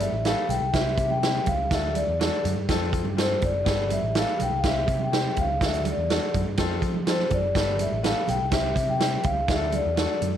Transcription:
Already playing: B3 G4 A4
0.00 E5, closed hi-hat, muted conga, high conga
0.12 A1
0.24 B3 G4 A4 F5, snare, closed hi-hat, muted conga
0.49 B1 G5, closed hi-hat, muted conga, high conga, low conga
0.61 C2
0.73 C2 C4 E4 F#4 E5, kick, snare, closed hi-hat, high conga
0.80 G4
0.98 C3, kick, closed hi-hat, muted conga
1.10 G5, high conga
1.23 C4 E4 G4, snare, closed hi-hat
1.36 high conga
1.46 C#2 F5, kick, closed hi-hat, muted conga, high conga, low conga
1.70 D2 D4 F#4 A4 E5, kick, snare, closed hi-hat
1.95 D5, closed hi-hat, high conga
2.08 E2
2.19 D4 F#4 A4, snare, closed hi-hat
2.44 F#2, closed hi-hat, high conga, low conga
2.56 G2
2.69 F2 C4 F4 A4, kick, snare, closed hi-hat, muted conga, high conga
2.93 kick, closed hi-hat, muted conga
3.05 G2, high conga
3.17 C4 F4 A4 C5, snare, closed hi-hat
3.31 high conga
3.42 F#1 D5, kick, closed hi-hat, high conga, low conga
3.65 G1 B3 G4 A4, kick, snare, closed hi-hat
3.90 E5, closed hi-hat, muted conga, high conga
4.03 A1
4.15 B3 G4 A4 F5, snare, closed hi-hat
4.40 B1 G5, closed hi-hat, high conga, low conga
4.52 C2
4.58 F5
4.63 C2 C4 E4 G4 E5, kick, snare, closed hi-hat, high conga
4.88 C3, kick, closed hi-hat
4.99 high conga
5.04 G5
5.12 C4 E4 G4, snare, closed hi-hat
5.25 high conga
5.36 C#2 F5, kick, closed hi-hat, muted conga, high conga, low conga
5.61 D2 D4 F#4 A4 E5, kick, snare, closed hi-hat
5.74 closed hi-hat
5.85 closed hi-hat, muted conga, high conga
5.90 D5
5.97 E2
6.09 D4 F#4 A4, snare, closed hi-hat
6.34 F#2, kick, closed hi-hat, muted conga, high conga, low conga
6.47 G2
6.57 F2 C4 F4 A4, kick, snare, closed hi-hat, high conga
6.82 F3, kick, closed hi-hat
6.94 high conga
7.06 C4 F4 A4 C5, snare, closed hi-hat, muted conga
7.19 snare, high conga
7.30 F#1 D5, kick, closed hi-hat, muted conga, high conga, low conga
7.55 G1 B3 G4 A4, kick, snare, closed hi-hat
7.79 E5, closed hi-hat, muted conga, high conga
7.92 A1
8.03 B3 G4 A4 F5, snare, closed hi-hat
8.28 B1 G5, closed hi-hat, high conga, low conga
8.41 C2
8.51 C2 C4 E4 G4 E5, kick, snare, closed hi-hat, muted conga, high conga
8.76 C3, kick, closed hi-hat, muted conga
8.88 G5, high conga
8.99 C4 E4 G4, snare, closed hi-hat, muted conga
9.13 high conga
9.23 C#2 F5, kick, closed hi-hat, muted conga, high conga, low conga
9.48 D2 D4 F#4 G#4 E5, kick, snare, closed hi-hat, muted conga
9.56 A4
9.72 D5, closed hi-hat, high conga
9.85 E2
9.96 D4 F#4 A4, snare, closed hi-hat
10.21 F#2, closed hi-hat, muted conga, high conga, low conga

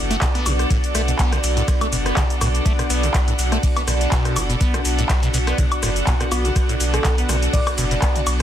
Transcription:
Already playing: F#1 B3 D4 F#4 A4 D5 F#5
0.11 A3, snare, closed hi-hat, cabasa
0.22 B2, kick, cross-stick, snare, clap, closed hi-hat, ride, cabasa
0.35 B3, snare, closed hi-hat, cabasa
0.46 B1 B2, open hi-hat, ride, cabasa, high woodblock
0.59 cross-stick, closed hi-hat, cabasa
0.70 A2, kick, closed hi-hat, ride, cabasa
0.84 closed hi-hat, cabasa
0.95 B1 A3, cross-stick, open hi-hat, ride, cabasa
1.08 B2, closed hi-hat, cabasa
1.19 B1 B3, kick, snare, clap, closed hi-hat, ride, cabasa
1.32 B2, cross-stick, snare, closed hi-hat, cabasa
1.44 B1, open hi-hat, ride, cabasa
1.57 A2, snare, closed hi-hat, cabasa
1.68 kick, cross-stick, closed hi-hat, ride, cabasa
1.81 A3, closed hi-hat, cabasa, high woodblock
1.92 F#1 B2, open hi-hat, ride, cabasa
2.06 B3, cross-stick, closed hi-hat, cabasa
2.17 B2, kick, snare, clap, closed hi-hat, ride, cabasa
2.30 closed hi-hat, cabasa
2.41 B1 A2, cross-stick, open hi-hat, ride, cabasa, high woodblock
2.55 closed hi-hat, cabasa
2.65 A3, kick, closed hi-hat, ride, cabasa
2.79 B2, cross-stick, closed hi-hat, cabasa
2.90 B1 B3, open hi-hat, ride, cabasa
3.03 B2, closed hi-hat, cabasa
3.14 B1, kick, cross-stick, snare, clap, closed hi-hat, ride, cabasa
3.28 A2, closed hi-hat, ride, cabasa
3.39 B1, open hi-hat, ride, cabasa
3.52 A3, cross-stick, closed hi-hat, cabasa
3.63 B2, kick, closed hi-hat, open hi-hat, cabasa
3.77 B3, snare, closed hi-hat, cabasa, high woodblock
3.88 B1 B2, cross-stick, open hi-hat, ride, cabasa
4.01 snare, closed hi-hat, cabasa
4.12 B2, kick, snare, clap, closed hi-hat, ride, cabasa
4.25 cross-stick, snare, closed hi-hat, cabasa
4.36 F#1 F#3, open hi-hat, ride, cabasa, high woodblock
4.50 B2, closed hi-hat, cabasa
4.61 B3 F#5, kick, closed hi-hat, ride, cabasa
4.74 B2, cross-stick, closed hi-hat, cabasa
4.85 B1, open hi-hat, ride, cabasa
4.98 A2, closed hi-hat, cabasa
5.09 B1, kick, cross-stick, snare, clap, closed hi-hat, ride, cabasa
5.23 B2, snare, closed hi-hat, cabasa
5.34 B1 B2, open hi-hat, ride, cabasa
5.47 B3, cross-stick, snare, closed hi-hat, cabasa
5.58 B2, kick, closed hi-hat, ride, cabasa
5.72 closed hi-hat, cabasa, high woodblock
5.83 F#1 A2, cross-stick, open hi-hat, ride, cabasa
5.96 closed hi-hat, cabasa
6.07 B2, kick, snare, clap, closed hi-hat, ride, cabasa
6.20 B2, cross-stick, closed hi-hat, cabasa
6.31 B1 B3 F#4, open hi-hat, ride, cabasa, high woodblock
6.45 B2, closed hi-hat, cabasa
6.56 kick, cross-stick, closed hi-hat, ride, cabasa
6.69 A2, closed hi-hat, cabasa
6.80 B1, open hi-hat, ride, cabasa
6.93 B2 A4, cross-stick, closed hi-hat, cabasa
7.05 B1 B2, kick, snare, clap, closed hi-hat, ride, cabasa
7.18 B3, closed hi-hat, ride, cabasa
7.29 B1 B2, cross-stick, open hi-hat, ride, cabasa
7.42 closed hi-hat, cabasa
7.53 A2 D5, kick, closed hi-hat, open hi-hat, cabasa
7.67 cross-stick, snare, closed hi-hat, cabasa, high woodblock
7.78 F#1 B2, open hi-hat, ride, cabasa
7.91 B2, snare, closed hi-hat, cabasa
8.02 B3, kick, cross-stick, snare, clap, closed hi-hat, ride, cabasa
8.15 B2, snare, closed hi-hat, cabasa
8.27 B1, open hi-hat, ride, cabasa, high woodblock

